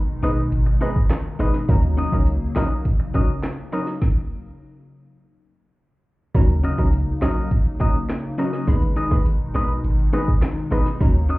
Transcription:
Already playing: B2 D#3 G#3 D#4
0.23 A#1 G#3 B3 D#4 G#4 B4 D#5, closed hi-hat
0.52 G#1, closed hi-hat
0.66 muted clean electric guitar stroke, closed hi-hat
0.81 G#3 B3 D#4 G#4 B4 D#5, closed hi-hat
0.96 kick
1.10 cross-stick, snare, clap, closed hi-hat
1.39 G#1 G#3 B3 D#4 G#4 B4 D#5, closed hi-hat
1.54 snare
1.69 D#2 C#3 F#3 A#3 C#4 D#4 A#4, kick, closed hi-hat
1.83 closed hi-hat
1.97 C#4 F#4 A#4 D#5, closed hi-hat
2.12 C#2 F#3 C#4 D#4 A#4, kick
2.27 closed hi-hat
2.56 A#1 F#3 C#4 D#4 F#4 A#4 D#5, snare, clap, closed hi-hat
2.85 kick, closed hi-hat
3.00 muted clean electric guitar stroke, closed hi-hat
3.14 F#3 C#4 D#4 F#4 A#4 D#5, kick, closed hi-hat
3.43 cross-stick, snare, clap, closed hi-hat
3.72 F#3 C#4 D#4 F#4 A#4 D#5, closed hi-hat
3.87 muted clean electric guitar stroke, snare
4.02 kick, snare
6.34 D#2 C#3 F#3 A#3 C#4 D#4 A#4, kick, closed hi-hat
6.49 closed hi-hat
6.63 C#4 F#4 A#4 D#5, closed hi-hat
6.78 C#2 F#3 C#4 D#4 A#4, kick
6.93 closed hi-hat
7.22 A#1 F#3 C#4 D#4 F#4 A#4 D#5, snare, clap, closed hi-hat
7.36 C#4 F#4 A#4 D#5
7.51 kick, closed hi-hat
7.66 closed hi-hat
7.80 F#3 C#4 D#4 F#4 A#4 D#5, kick, closed hi-hat
8.10 cross-stick, snare, clap, closed hi-hat
8.38 F#3 C#4 D#4 F#4 A#4 D#5, closed hi-hat
8.53 C#4 F#4 A#4 D#5, snare
8.67 G#1 B2 D#3 G#3 B3 D#4 B4, kick, closed hi-hat
8.82 closed hi-hat
8.96 D#4 G#4 B4 D#5, closed hi-hat
9.11 G#1 G#3 B3 D#4 B4, kick
9.26 closed hi-hat
9.54 A#1 G#3 B3 D#4 G#4 B4 D#5, closed hi-hat
9.84 G#1, closed hi-hat
9.99 closed hi-hat
10.13 G#3 B3 D#4 G#4 B4 D#5, closed hi-hat
10.28 kick
10.42 cross-stick, snare, clap, closed hi-hat
10.71 G#1 G#3 B3 D#4 G#4 B4 D#5, closed hi-hat
10.86 snare
11.00 D#2 C#3 F#3 A#3 C#4 D#4 A#4, kick, closed hi-hat
11.15 closed hi-hat
11.29 C#4 F#4 A#4 D#5, closed hi-hat

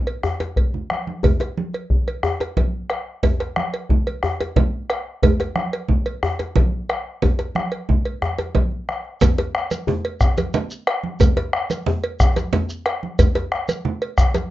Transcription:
0.07 cowbell, djembe slap
0.23 bombo rim, djembe bass
0.40 bombo rim, cowbell, djembe slap, djembe tone
0.56 bombo low, cowbell, djembe slap, low conga
0.74 djembe slap, low conga
0.90 bombo rim, high conga
1.07 high conga
1.23 bombo low, cowbell, high conga, djembe bass, low conga
1.40 bombo rim, cowbell, djembe slap, djembe tone
1.57 high conga
1.74 cowbell, djembe slap
1.90 bombo low, high conga
2.07 cowbell, high conga
2.23 bombo rim, djembe bass
2.40 cowbell, djembe slap, djembe tone
2.57 bombo low, cowbell, high conga, low conga
2.90 bombo rim, cowbell
3.23 bombo low, cowbell, high conga, low conga, djembe bass
3.40 bombo rim, cowbell, djembe slap
3.56 bombo rim, high conga
3.74 cowbell, djembe slap
3.89 bombo low, high conga, low conga
4.07 cowbell, high conga
4.23 bombo rim, djembe bass
4.41 cowbell, djembe slap, djembe tone
4.56 bombo rim, bombo low, cowbell, high conga, low conga
4.90 bombo rim, cowbell
5.23 bombo low, cowbell, high conga, low conga, djembe bass
5.40 bombo rim, cowbell, djembe slap, djembe tone
5.55 bombo rim, high conga
5.73 cowbell, djembe slap
5.88 bombo low, high conga, low conga
6.06 cowbell, high conga
6.23 bombo rim, djembe bass
6.39 cowbell, djembe slap, djembe tone
6.56 bombo rim, bombo low, cowbell, high conga, low conga
6.89 bombo rim, cowbell
7.22 bombo rim, bombo low, cowbell, high conga, low conga, djembe bass
7.39 cowbell, djembe slap, djembe tone
7.55 bombo rim, high conga
7.72 cowbell
7.89 bombo low, low conga
8.05 cowbell, djembe slap
8.22 bombo rim, djembe slap, high conga, djembe bass
8.38 cowbell, djembe slap, high conga, djembe tone
8.55 bombo low, cowbell, high conga, low conga
8.71 high conga
8.89 bombo rim, high conga
9.05 bombo rim
9.21 bombo rim, bombo low, cowbell, djembe slap, low conga, djembe bass, shekere
9.38 cowbell, djembe slap, djembe tone, high conga
9.55 bombo rim
9.71 cowbell, djembe slap, high conga, shekere
9.87 bombo rim, djembe bass, low conga
10.05 cowbell
10.21 bombo rim, bombo low, djembe slap, shekere
10.37 cowbell, djembe slap, djembe tone, high conga, shekere
10.54 cowbell, djembe slap, high conga, low conga, shekere
10.71 djembe slap, shekere
10.87 bombo rim, cowbell
11.03 high conga
11.20 bombo rim, bombo low, cowbell, djembe slap, low conga, djembe bass, shekere
11.37 cowbell, djembe slap, high conga, djembe tone
11.53 bombo rim
11.70 cowbell, djembe slap, high conga, shekere
11.86 bombo rim, low conga, djembe bass
12.04 cowbell
12.20 bombo rim, bombo low, djembe slap, shekere
12.36 cowbell, djembe slap, high conga, djembe tone, shekere
12.53 cowbell, djembe slap, high conga, low conga, djembe bass, shekere
12.69 djembe slap, shekere
12.86 bombo rim, cowbell, djembe slap
13.03 high conga
13.19 bombo rim, bombo low, cowbell, djembe slap, low conga, djembe bass, shekere
13.35 cowbell, djembe slap, djembe tone, high conga
13.52 bombo rim
13.69 cowbell, djembe slap, high conga, shekere
13.85 bombo rim, low conga
14.02 cowbell
14.18 bombo rim, bombo low, djembe slap, shekere
14.34 cowbell, djembe slap, djembe tone, high conga, shekere

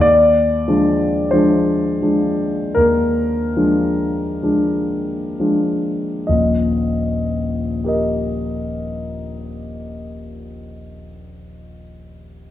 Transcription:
Already playing: D#2
0.01 D5
0.68 F3 G#3 D4
1.31 F3 G#3 D4 C5
2.02 F3 G#3 D4
2.75 D#2 A#4
3.56 F3 G#3 D4
4.43 F3 G#3 D4
5.39 F3 G#3 D4
6.27 D#1 A#1 D#5
7.84 G4 A#4
7.88 D#5

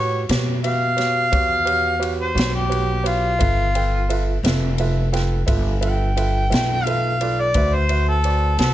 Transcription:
Already playing: A2 F#4 G4 B4 C#5
0.29 B2 F#4 G4 B4 C#5, snare, ride
0.63 F#4 G4 B4 E5 F5, ride
0.97 F#4 G4 B4 C#5, snare, ride
1.31 E2 F#4 G4 B4 C#5, kick, ride
1.65 F#4 G4 B4 C#5, ride
1.99 F#4 G4 B4 C#5, ride
2.21 C5
2.35 B1 F#4 G4 B4 C#5, ride
2.39 snare
2.55 G4
2.69 F#4 G4 B4 C#5, ride
3.03 F4 F#4 G4 B4 C#5, ride
3.39 G1 F4 A4 B4 E5, kick, ride
3.75 F4 A4 B4 G5, ride
4.09 F4 A4 B4 E5, ride
4.43 F1 F4 A4 B4 E5, snare, ride
4.78 F4 A4 B4 E5, ride
5.12 F4 A4 B4 G5, snare, ride
5.46 G1 F4 A4 B4 E5, kick, ride
5.81 F4 A4 B4 E5, ride
5.85 G5
6.16 F4 A4 B4 E5, ride
6.50 B1 F4 A4 B4 E5, snare, ride
6.84 F4 A4 B4 E5 F5, ride
7.21 F4 A4 B4 D5, ride
7.41 D5
7.54 D2 F#4 B4 C5 E5, kick, ride
7.74 C5
7.89 F#4 B4 C5 E5, ride
8.09 A4
8.24 F#4 B4 C5 D5, ride
8.58 C2 F#4 A4 B4 C5 F#5, snare, ride

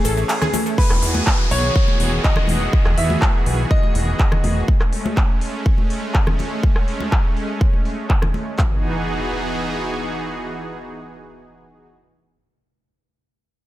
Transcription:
Already playing: E3 A3 C#4 G#4
0.05 A1 A4, open hi-hat, shaker
0.17 A3, shaker
0.29 A3, clap, ride, shaker
0.42 G#4, cross-stick, low conga, shaker
0.54 A3, open hi-hat, high conga, shaker
0.66 A3, shaker
0.78 D#3 E3 B3 F#4 G#4 B4, kick, downlifter
0.90 E1, cross-stick, clap
1.02 E2, open hi-hat
1.15 high conga
1.27 kick, clap
1.51 B1 C#5, open hi-hat
1.76 kick
1.88 high conga
2.00 E1, open hi-hat
2.24 D#5, kick, clap
2.36 cross-stick, low conga
2.47 E1, open hi-hat, high conga
2.73 kick
2.85 E1, cross-stick, clap
2.98 E2 E5, open hi-hat
3.10 high conga
3.22 kick, clap
3.46 B1, open hi-hat
3.71 D#5, kick
3.83 high conga
3.95 E1, open hi-hat
4.19 kick, clap
4.32 cross-stick, low conga
4.44 E1, open hi-hat, high conga
4.68 G#3 A3 C#4, kick
4.81 cross-stick, clap
4.93 open hi-hat
5.06 high conga
5.17 kick, clap
5.41 open hi-hat
5.66 kick
5.78 high conga
5.90 open hi-hat
6.15 kick, clap
6.27 cross-stick, low conga
6.39 open hi-hat, high conga
6.63 kick
6.76 cross-stick, clap
6.88 open hi-hat
7.00 high conga
7.12 kick, clap
7.37 open hi-hat
7.61 kick
7.73 high conga
7.85 open hi-hat
8.10 kick, clap
8.22 cross-stick, low conga
8.34 open hi-hat, high conga
8.59 E3 B3 D#4 F#4 G#4, kick, clap, impact

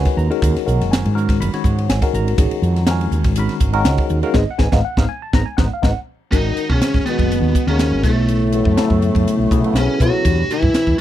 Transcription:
Already playing: D#3 G#3 C#4 F#4 B4 G#5
0.05 muted fretless electric bass stroke, kick, snare, ride
0.17 D#2 A#5, hi-hat pedal
0.30 D#3 G#3 C#4 F#4 A#4, ride
0.42 D#2, kick, hi-hat pedal, ride
0.56 muted fretless electric bass stroke, snare, ride
0.66 B1 D#3 G#3 C#4 F#4 A#4, hi-hat pedal
0.81 F#1, snare, ride
0.91 G#5, snare, hi-hat pedal, ride
1.05 G#2, ride
1.15 D#3 G#3 C#4 F#4 A#4, hi-hat pedal
1.29 kick, snare, ride
1.40 F#1 B5, hi-hat pedal, ride
1.53 D#3 G#3 C#4 F#4 C#5, snare, ride
1.64 G#2, kick, hi-hat pedal
1.79 ride
1.89 G#1 G#5, snare, hi-hat pedal, ride
2.02 D#3 G#3 C#4 F#4 A#4, kick, snare, ride
2.13 G#1 A#5, hi-hat pedal
2.28 ride
2.37 G#1 D#3 G#3 C#4 F#4 G#4, kick, hi-hat pedal, ride
2.51 muted fretless electric bass stroke, ride
2.62 F2, hi-hat pedal
2.76 snare, ride
2.87 D#3 G#3 C#4 F#4 A#4, snare, hi-hat pedal, ride
2.91 G#5
3.01 ride
3.11 D#2, hi-hat pedal
3.24 G#1, kick, snare, ride
3.36 D#3 G#3 C#4 F#4 A#4 B5, hi-hat pedal, ride
3.49 snare, ride
3.60 G#1, kick, hi-hat pedal
3.73 D#3 G#3 C#4 F#4 A#4, ride
3.85 C#2, snare, hi-hat pedal, ride
3.98 muted fretless electric bass stroke, kick, ride
4.09 D#2, hi-hat pedal
4.22 D#3 G#3 C#4 F#4 A#4 F5, ride
4.34 G#1 G#3 B3 D#4, kick, snare
4.38 D#5
4.51 F#5
4.58 G#1 G#3 B3 D#4 G#5, kick, snare
4.72 G#1 G#3 B3 D#4 F5, kick, snare
4.85 F#5
4.97 G#1 G#3 B3 D#4 F5, kick, snare
5.09 G#5
5.22 A5
5.33 G#1 G#3 B3 D#4 A#5, kick, snare
5.46 G#5
5.57 G#1 G#3 B3 D#4 F#5, kick, snare
5.73 F5
5.82 G#1 G#3 B3 D#4 F#5, kick, snare
6.32 G#1 D#3 G#3 C#4 D#4 F#4 A#4, kick, hi-hat pedal, ride
6.57 hi-hat pedal, ride
6.70 B1 C#3 C#4, kick
6.82 muted fretless electric bass stroke, snare, hi-hat pedal, ride
6.94 G#1, kick, snare
7.05 B2 D#3 G#3 B3 C#4 F#4 G#4, muted fretless electric bass stroke, hi-hat pedal, ride
7.19 F#1, kick, ride
7.32 hi-hat pedal, ride
7.41 D#2
7.55 kick, hi-hat pedal, ride
7.67 D#2 C#3 D#3 G#3 C#4 F#4 A#4, ride
7.79 snare, hi-hat pedal, ride
7.91 G#1
8.03 B1 A2 C#3 F#3 A3 B3 E4 A4, kick, snare, hi-hat pedal, ride
8.28 hi-hat pedal, ride
8.52 C#3 F#3 B3 E4 A4, hi-hat pedal, ride
8.65 F#2, kick
8.76 C#3 F#3 B3 E4 A4, muted fretless electric bass stroke, snare, hi-hat pedal, ride
8.90 F#2, kick
9.02 hi-hat pedal, ride
9.15 F#2, kick, ride
9.25 muted fretless electric bass stroke, hi-hat pedal, ride
9.38 B1
9.51 B1 C#3 F#3 B3 E4 G#4, kick, hi-hat pedal, ride
9.64 C#3 F#3 B3 E4 A4, ride
9.74 B1 C#3, snare, hi-hat pedal, ride
9.78 C#4
10.00 B2 C#3 F#3 B3 E4 F#4 A4, kick, hi-hat pedal, ride
10.10 muted fretless electric bass stroke
10.25 E2 B2 E3 A3 D4 G4, kick, hi-hat pedal, ride
10.48 E4, muted fretless electric bass stroke, hi-hat pedal, ride
10.52 E3
10.62 G2, kick
10.74 muted fretless electric bass stroke, snare, hi-hat pedal, ride
10.87 E2, kick

